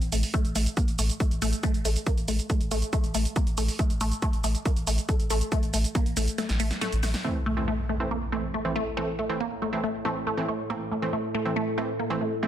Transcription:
0.02 A1, closed hi-hat, shaker
0.12 A1 A3, open hi-hat, shaker
0.23 open hi-hat, shaker
0.34 A3, kick, closed hi-hat, shaker
0.45 A1, closed hi-hat, shaker
0.55 A1 A3, open hi-hat, shaker
0.66 closed hi-hat, shaker
0.77 A#3, kick, closed hi-hat, shaker
0.88 A1, closed hi-hat, shaker
0.99 A1 A3, open hi-hat, shaker
1.10 closed hi-hat, shaker
1.20 A3, kick, closed hi-hat, shaker
1.31 A1, closed hi-hat, shaker
1.42 A1 A3, open hi-hat, shaker
1.53 closed hi-hat, shaker
1.63 A3, kick, closed hi-hat, shaker
1.74 A1, closed hi-hat, shaker
1.85 A1 A3, open hi-hat, shaker
1.96 closed hi-hat, shaker
2.07 A#3, kick, closed hi-hat, shaker
2.18 A1, closed hi-hat, shaker
2.28 A1 A3, open hi-hat, shaker
2.39 closed hi-hat, shaker
2.50 A3, kick, closed hi-hat, shaker
2.61 A1, closed hi-hat, shaker
2.71 A1 A3, open hi-hat, shaker
2.82 closed hi-hat, shaker
2.93 A3, kick, closed hi-hat, shaker
3.04 A1, closed hi-hat, shaker
3.14 A1 A3, open hi-hat, shaker
3.25 closed hi-hat, shaker
3.36 A#3, kick, closed hi-hat, shaker
3.47 A1, closed hi-hat, shaker
3.58 A1 A3, open hi-hat, shaker
3.68 open hi-hat, shaker
3.79 A3, kick, closed hi-hat, shaker
3.90 A1, closed hi-hat, shaker
4.01 A1 A3, open hi-hat, shaker
4.12 closed hi-hat, shaker
4.22 A3, kick, closed hi-hat, shaker
4.33 A1, closed hi-hat, shaker
4.44 A1 A3, open hi-hat, shaker
4.55 closed hi-hat, shaker
4.66 A#3, kick, closed hi-hat, shaker
4.76 A1, closed hi-hat, shaker
4.87 A1 A3, open hi-hat, shaker
4.98 closed hi-hat, shaker
5.09 A3, kick, closed hi-hat, shaker
5.20 A1, closed hi-hat, shaker
5.30 A1 A3, open hi-hat, shaker
5.41 closed hi-hat, shaker
5.52 A3, kick, closed hi-hat, shaker
5.63 A1, closed hi-hat, shaker
5.74 A1 A3, open hi-hat, shaker
5.84 closed hi-hat, shaker
5.95 A#3, kick, closed hi-hat, shaker
6.06 A1, closed hi-hat, shaker
6.17 A1 A3, open hi-hat, shaker
6.28 closed hi-hat, shaker
6.38 A3, snare, closed hi-hat, shaker
6.49 A1, snare, closed hi-hat, shaker
6.60 A1 A3, open hi-hat, shaker
6.71 snare, closed hi-hat, shaker
6.81 A3, snare, closed hi-hat, shaker
6.92 A1, closed hi-hat, shaker
7.03 A1 A3, snare, open hi-hat, shaker
7.14 snare, open hi-hat, shaker
7.24 A2 E3 A3 C4, impact
7.46 A3
7.57 E3 A3 C4
7.68 A3
7.89 A3
8.00 E3 A3 C4
8.11 A#3
8.32 E3 A3 C4
8.54 A3
8.65 E3 A3 C4
8.76 A3
8.97 E3 A3 C4
9.19 A3
9.29 E3 A3 C4
9.40 A#3
9.62 A3
9.73 E3 A3 C4
9.84 A3
10.05 E3 A3 C4
10.27 A3
10.37 E3 A3 C4
10.48 A3
10.70 E3 A3 A#3 C4
10.92 A3
11.02 E3 A3 C4
11.13 A3
11.35 A3
11.45 E3 A3 C4
11.56 A3
11.78 E3 A3 C4
11.99 A#3
12.10 E3 A3 C4
12.21 A3
12.43 E3 A3 C4

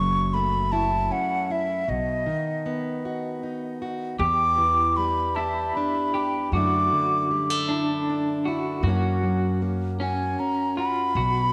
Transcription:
Already playing: F#1 F#2 F#3 C#6
0.34 A3 B5
0.72 E4 A5
1.11 C#4 F#5
1.50 E4 E5
1.88 B1 B2 D#5
2.26 D#3
2.66 B3
3.05 F#4
3.43 D#4
3.82 F#4
4.19 E2 G4 D6
4.58 E3
4.97 G3 B5
5.35 E4 G4 A5
5.75 D4 B5
6.14 G4
6.52 F#2 D3 A3 F#4 D6
6.56 D4 E4
6.92 D3
7.31 G3
7.50 A3
7.69 D4 E4
8.10 D4
8.45 E4 F#4
8.83 F#2 F#3 F#4
8.87 A#3 C#4 F#4
9.23 F#3
9.62 A#3
10.00 C#4 F#4 G#5
10.39 C#4 A#5
10.77 F4 F#4 B5
11.15 B1 B2 F#4

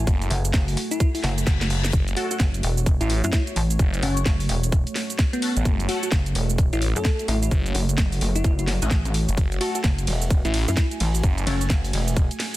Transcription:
Already playing: A3 F#4 G#5
0.07 F#1, kick, closed hi-hat, shaker
0.22 closed hi-hat, shaker
0.30 F#1, open hi-hat
0.45 closed hi-hat, shaker
0.54 F#1, kick, snare, closed hi-hat, shaker
0.68 open hi-hat, shaker
0.77 open hi-hat
0.91 E4, closed hi-hat, shaker
1.00 E4, kick, closed hi-hat, reverse cymbal, shaker
1.15 E4, open hi-hat, shaker
1.24 F#1, snare, open hi-hat
1.38 closed hi-hat, shaker
1.47 F#1, kick, snare, closed hi-hat, shaker
1.61 snare, closed hi-hat, shaker
1.70 open hi-hat
1.85 snare, closed hi-hat, shaker
1.93 F#1 C#5, kick, closed hi-hat, shaker
2.08 closed hi-hat, shaker
2.16 A3 C#4 F#4 A4, open hi-hat
2.31 F#4, closed hi-hat, shaker
2.40 F#1, kick, snare, closed hi-hat, shaker
2.54 closed hi-hat, shaker
2.63 E1, open hi-hat
2.78 shaker
2.86 kick, closed hi-hat, shaker
3.01 A1 E4, closed hi-hat, shaker
3.10 open hi-hat
3.24 F#2 E4, closed hi-hat, shaker
3.33 E4, kick, snare, closed hi-hat, shaker
3.47 closed hi-hat, shaker
3.56 A1, open hi-hat
3.71 closed hi-hat, shaker
3.79 F#1, kick, closed hi-hat, shaker
3.94 closed hi-hat, shaker
4.03 F#1 A3 C#4 F#4 C#5, open hi-hat
4.17 closed hi-hat, shaker
4.26 F#1, kick, snare, closed hi-hat, shaker
4.40 open hi-hat, shaker
4.49 E1, open hi-hat
4.64 closed hi-hat, shaker
4.72 kick, closed hi-hat, shaker
4.87 closed hi-hat, shaker
4.95 snare, open hi-hat
5.10 closed hi-hat, shaker
5.19 kick, snare, closed hi-hat, shaker
5.33 B3, closed hi-hat, shaker
5.42 A3 C#4 F#4 A4, open hi-hat
5.57 A1, closed hi-hat, shaker
5.65 F#1, kick, closed hi-hat, shaker
5.80 closed hi-hat, shaker
5.89 A3 C#4 F#4 A4, open hi-hat
6.03 F#4, closed hi-hat, shaker
6.12 F#1, kick, snare, closed hi-hat, shaker
6.26 closed hi-hat, shaker
6.35 E1, open hi-hat
6.50 shaker
6.58 kick, closed hi-hat, shaker
6.73 A1 E4, closed hi-hat, shaker
6.82 open hi-hat
6.96 F#2 A4, closed hi-hat, shaker
7.05 kick, snare, closed hi-hat, shaker
7.19 closed hi-hat, shaker
7.28 A1 E4, open hi-hat
7.43 E4, closed hi-hat, shaker
7.51 F#1, kick, closed hi-hat, shaker
7.66 closed hi-hat, shaker
7.75 F#1, open hi-hat
7.89 closed hi-hat, shaker
7.98 F#1, kick, snare, closed hi-hat, shaker
8.12 open hi-hat, shaker
8.21 F#1, open hi-hat
8.35 E4, closed hi-hat, shaker
8.44 F#1, kick, closed hi-hat, shaker
8.59 E4, closed hi-hat, shaker
8.67 snare, open hi-hat
8.82 A1 A3 C#4 F#4 G#4, closed hi-hat, shaker
8.91 kick, snare, closed hi-hat, shaker
9.05 closed hi-hat, shaker
9.14 open hi-hat
9.29 F#1, closed hi-hat, shaker
9.37 F#1 G#5, kick, closed hi-hat, ride, shaker
9.52 closed hi-hat, shaker
9.61 A3 C#4 F#4 A4, open hi-hat, ride
9.75 F#4, closed hi-hat, shaker
9.84 F#1, kick, snare, closed hi-hat, ride, shaker
9.98 closed hi-hat, shaker
10.07 E1, open hi-hat, ride
10.22 shaker
10.30 kick, closed hi-hat, ride, shaker
10.45 A1 E4, closed hi-hat, shaker
10.54 open hi-hat, ride
10.68 F#2 E4, closed hi-hat, shaker
10.77 E4, kick, snare, closed hi-hat, ride, shaker
10.91 closed hi-hat, shaker
11.00 A1, open hi-hat, ride
11.15 closed hi-hat, shaker
11.23 F#1, kick, closed hi-hat, ride, shaker
11.38 closed hi-hat, shaker
11.47 F#1 A3 C#4 F#4 C#5, open hi-hat, ride
11.61 closed hi-hat, shaker
11.70 F#1, kick, snare, closed hi-hat, ride, shaker
11.84 open hi-hat, shaker
11.93 E1, open hi-hat, ride
12.08 closed hi-hat, shaker
12.17 kick, closed hi-hat, ride, shaker
12.31 closed hi-hat, shaker
12.40 snare, open hi-hat, ride

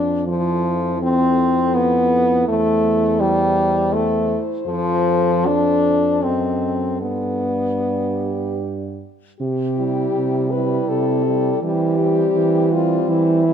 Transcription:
Already playing: F2 D4
0.27 F3 E4 A4
1.02 C4
1.75 B3
2.48 E2 A3 C5
3.20 G3
3.93 A3
4.66 F2 F3 A4
5.46 D4
6.23 F#2 C4 D#5
7.01 G2 B3 D5
7.81 G4
9.40 C3 G4
9.78 G3 E4
10.16 C3
10.51 G3 E4 B4
10.89 C3 A4
11.26 G3 E4
11.62 E3 G3 C4 G4
11.99 G3 C4
12.35 E3
12.71 G3 C4 F4
13.09 E3 E4
13.47 G3 C4

